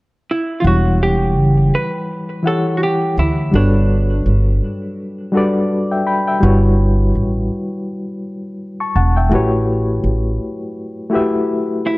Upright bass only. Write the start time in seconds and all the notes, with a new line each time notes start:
0.64 E1
1.36 F#1
3.17 D2
3.54 G1
4.26 G1
6.43 G1
7.15 A1
8.96 E1
9.31 A1
10.04 A1